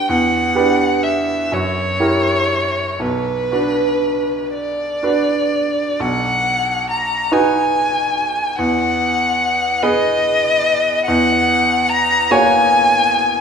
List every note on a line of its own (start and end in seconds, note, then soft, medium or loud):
0.00 0.12 D4 soft
0.00 0.12 G4 soft
0.00 0.12 B4 soft
0.09 0.54 E2 soft
0.09 1.05 F#5 medium
0.55 1.47 D4 soft
0.55 1.47 G4 soft
0.55 1.48 B4 soft
1.03 1.55 E5 soft
1.52 1.99 F#2 soft
1.52 3.02 C#5 medium
2.00 2.96 E4 soft
2.00 2.96 G4 soft
2.00 2.97 A#4 soft
2.99 3.50 B1 soft
2.99 4.53 B4 medium
3.51 4.99 D4 soft
3.51 4.99 F#4 soft
3.51 5.00 B4 soft
4.54 6.03 D5 soft
5.03 5.97 D4 soft
5.03 5.97 F#4 soft
5.03 5.97 B4 soft
6.00 7.27 B1 soft
6.00 6.89 F#5 medium
6.90 7.34 A#5 medium
7.32 8.54 D#4 soft
7.32 8.54 F#4 soft
7.32 8.55 B4 soft
7.32 8.58 G#5 medium
8.58 9.79 E2 soft
8.58 9.84 F#5 medium
9.82 11.02 B3 soft
9.82 11.03 G#4 soft
9.82 11.03 B4 soft
9.82 11.05 D#5 medium
11.05 12.27 E2 medium
11.05 11.91 F#5 medium
11.89 12.33 A#5 medium
12.31 13.41 A#3 soft
12.31 13.41 F#4 soft
12.31 13.41 C#5 medium
12.31 13.41 G#5 medium